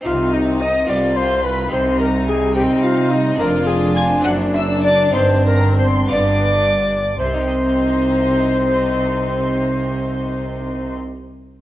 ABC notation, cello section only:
X:1
M:6/8
L:1/8
Q:3/8=65
K:Cm
V:1 name="Cello section" clef=bass
C,3 C,3 | C,3 C3 | F,,3 ^F,,3 | G,,3 G,,3 |
C,6- | C,6 |]